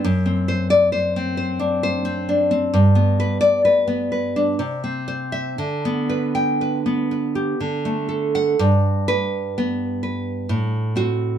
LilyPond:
\new Staff \with { instrumentName = "Nylon-string guitar" } { \time 3/4 \key g \major \tempo 4 = 63 << { r8. d''8 r4. r16 | r8. d''8 r4. e''16 | r8. g''8 r4. fis''16 | r8 b'8. r4 r16 fis'8 | } \\ { fis,16 c'16 c''8 c''16 c'16 c''16 d'16 c''16 c'16 d'16 c'16 | g,16 b16 b'8 b'16 b16 b'16 d'16 c16 c'16 c''8 | d16 b16 b'8 b'16 b16 b'16 g'16 d16 a16 a'8 | g,4 b8 b'8 a,8 c'8 | } >> }